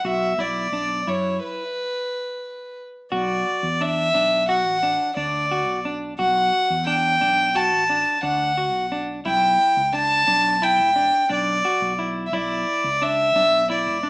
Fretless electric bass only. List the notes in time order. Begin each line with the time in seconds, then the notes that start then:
0.05 B1
0.38 B1
0.72 B1
1.07 F#2
3.12 B1
3.63 E2
4.14 B1
4.65 A1
5.17 D2
5.68 B1
6.19 B1
6.70 E2
7.22 B1
7.73 A1
8.23 D2
8.73 B1
9.25 B1
9.77 C#2
10.28 B1
10.79 E1
11.30 B1
11.82 B1
12.32 B1
12.84 C#2
13.35 B1
13.86 E1